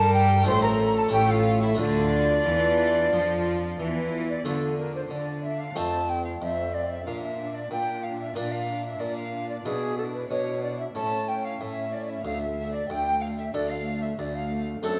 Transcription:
Already playing: double bass section G2, harpsichord G3 A#3 D4 G4, cello section G3, violin section A4 A5, viola section A#4, flute A5
0.13 violin section G4 G5, flute G5
0.43 harpsichord A3 D4 F4, violin section C5, flute C6
0.47 double bass section A1, harpsichord A2, cello section A2, viola section A4, violin section C6
0.63 violin section A#4 A#5, flute A#5
0.96 violin section A4 A5, flute A5
1.08 harpsichord A3 C#4 E4, flute G5, violin section G5
1.13 double bass section A1, harpsichord A2, cello section A2, violin section G4
1.30 violin section F4 F5, flute F5
1.63 violin section E4 E5, flute E5
1.75 harpsichord A3 D4 F4, violin section D4 D5
1.79 double bass section D2, harpsichord D3, cello section D3, viola section F4, flute D5
2.46 double bass section E2, harpsichord E3, cello section E3
3.13 double bass section F2, harpsichord F3, cello section F3
3.79 double bass section E2, harpsichord E3, cello section E3
4.28 violin section D5, flute D5
4.45 cello section D3, harpsichord D3 A3 D4 F4, viola section D4, violin section F4 A4, flute A4
4.78 viola section D4, violin section F4 A#4, flute A#4
4.94 violin section C5, flute C5
5.10 cello section D3, harpsichord D3, viola section D4, violin section F4 D5, flute D5
5.43 viola section D4, violin section F4 E5, flute E5
5.58 violin section F5, flute F5
5.75 cello section F2, harpsichord F2 A3 C4 F4, viola section C4, violin section F4 A5, flute A5
6.07 viola section C4, violin section F4 G5, flute G5
6.24 violin section F5, flute F5
6.41 cello section F2, harpsichord F2, viola section C4, violin section F4 E5, flute E5
6.73 viola section C4, violin section F4 D5, flute D5
6.90 flute E5, violin section E5
7.05 cello section A#2, harpsichord A#2, viola section D4, violin section F4 F5, flute F5
7.22 flute E5, violin section E5
7.38 viola section D4, violin section F4
7.54 violin section D5, flute D5
7.71 harpsichord A#2, cello section A#2, viola section D4, violin section F4 G5, flute G5
8.03 viola section D4, violin section F4 F5, flute F5
8.19 violin section E5, flute E5
8.35 cello section A#2, harpsichord A#2 A#3 D4 F4, viola section D4, violin section F4 D5, flute D5
8.51 flute F5, violin section F5
8.68 viola section D4, violin section F4
8.83 violin section E5, flute E5
9.00 cello section A#2, harpsichord A#2, viola section D4, violin section F4 D5, flute D5
9.15 violin section F5, flute F5
9.32 viola section D4, violin section F4
9.49 violin section D5, flute D5
9.65 cello section B2, harpsichord B2 D4 E4, viola section D4, violin section E4 G#4, flute G#4
9.97 viola section D4, violin section E4 A4, flute A4
10.14 flute B4, violin section B4
10.29 cello section B2, harpsichord B2, viola section D4, violin section E4 C#5, flute C#5
10.61 viola section D4, violin section E4 D5, flute D5
10.78 violin section E5, flute E5
10.94 cello section A2, harpsichord A2 C#4 E4 A4, viola section C#4, violin section E4 A5, flute A5
11.27 viola section C#4, violin section E4 G5, flute G5
11.44 violin section F5, flute F5
11.60 cello section A2, harpsichord A2, viola section C#4, violin section E4 E5, flute E5
11.92 viola section C#4, violin section E4 D5, flute D5
12.07 violin section E5, flute E5
12.23 cello section D2, harpsichord D2, viola section A3, violin section D4 F5, flute F5
12.39 violin section E5, flute E5
12.57 viola section A3, violin section D4
12.73 violin section D5, flute D5
12.88 cello section D2, harpsichord D2, viola section A3, violin section D4 G5, flute G5
13.21 viola section A3, violin section D4 F5, flute F5
13.38 flute E5, violin section E5
13.54 cello section D2, harpsichord D2 D4 A4, viola section A3, violin section D4 D5, flute D5
13.69 violin section F5, flute F5
13.86 viola section A3, violin section D4
14.02 flute E5, violin section E5
14.18 cello section D2, harpsichord D2, viola section A3, violin section D4 D5, flute D5
14.35 flute F5, violin section F5
14.51 viola section A3, violin section D4
14.82 cello section F#2, harpsichord F#2 C4 D4 A4, viola section C4, violin section D4 A4, flute A4

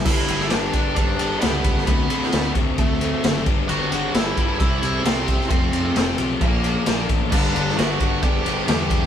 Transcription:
0.05 picked electric bass G1, overdriven electric guitar G2 D3 G3 B3 D4 G4, lead electric guitar E4 E5, kick, crash
0.27 picked electric bass G1, overdriven electric guitar G3 B3 D4 G4, ride
0.40 snare
0.50 picked electric bass G1, overdriven electric guitar G3 B3 D4 G4, lead electric guitar D4 D5, snare, ride
0.73 picked electric bass G1, overdriven electric guitar G3 B3 D4 G4, kick, ride
0.95 picked electric bass G1, lead electric guitar D4 D5, kick, ride
1.19 picked electric bass G1, overdriven electric guitar G3 B3 D4 G4, ride
1.40 picked electric bass C#2, overdriven electric guitar G2 D3 G3 B3, lead electric guitar B3 B4, snare, ride
1.44 overdriven electric guitar D4 G4
1.64 kick, ride
1.77 snare
1.86 picked electric bass D2, overdriven electric guitar D3 A3 C4, lead electric guitar B3 B4, kick, ride
1.91 overdriven electric guitar F#4
2.10 picked electric bass D3, overdriven electric guitar A3 C4 F#4, ride
2.22 snare
2.32 picked electric bass D2, overdriven electric guitar D3 A3 C4 F#4, snare, ride
2.55 picked electric bass D2, overdriven electric guitar A3 C4 F#4, kick, ride
2.78 picked electric bass D2, lead electric guitar A3 A4, kick, ride
3.00 overdriven electric guitar A3 C4 F#4, ride
3.23 picked electric bass F#1, overdriven electric guitar D3 A3 C4 F#4, snare, ride
3.46 picked electric bass G1, overdriven electric guitar G2 D3 G3 B3 D4 G4, kick, ride
3.69 picked electric bass G1, overdriven electric guitar G2 D3 G3 B3 D4 G4, lead electric guitar F#4 F#5, ride
3.91 picked electric bass G1, overdriven electric guitar G3 B3 D4 G4, ride
4.14 picked electric bass G1, overdriven electric guitar G3 B3 D4 G4, lead electric guitar E4 E5, snare, ride
4.37 picked electric bass G1, overdriven electric guitar G3 B3 D4 G4, kick, ride
4.59 picked electric bass C2, overdriven electric guitar C3 G3 C4 E4, lead electric guitar E4 E5, kick, ride
4.63 overdriven electric guitar G4
4.82 picked electric bass C2, overdriven electric guitar C4 E4 G4, ride
5.04 picked electric bass C2, overdriven electric guitar C3 G3 C4 E4 G4, lead electric guitar C4 C5, snare, ride
5.28 kick, ride
5.41 snare
5.49 picked electric bass F1, overdriven electric guitar F2 C3 F3 A3 C4, lead electric guitar C4 C5, kick, ride
5.72 picked electric bass F2, overdriven electric guitar F3 A3 C4, ride
5.95 picked electric bass F1, overdriven electric guitar C3 F3 A3 C4, snare, ride
6.17 picked electric bass B1, overdriven electric guitar F3 A3 C4, ride
6.41 picked electric bass A#1, overdriven electric guitar A#2 F3 A#3 D4, lead electric guitar A#3 A#4, kick, ride
6.63 overdriven electric guitar F3 A#3 D4, ride
6.86 picked electric bass A#1, overdriven electric guitar A#2 F3 A#3 D4, snare, ride
7.09 picked electric bass A1, kick, ride
7.31 picked electric bass G1, overdriven electric guitar G2 D3 G3 B3 D4, lead electric guitar D4 D5, kick, crash
7.53 picked electric bass G1, overdriven electric guitar G3 B3 D4, ride
7.69 snare
7.76 picked electric bass G1, overdriven electric guitar D3 G3 B3 D4, lead electric guitar F#4 F#5, snare, ride
7.99 picked electric bass G1, overdriven electric guitar G3 B3 D4, kick, ride
8.21 picked electric bass G1, distorted electric guitar G2 D3 G3 B3 D4, lead electric guitar G4 G5, kick, ride
8.45 picked electric bass G1, overdriven electric guitar G3 B3 D4, ride
8.66 picked electric bass E2, overdriven electric guitar G2 D3 G3 B3 D4, lead electric guitar G4 G5, snare, ride
8.90 kick, ride
9.03 snare

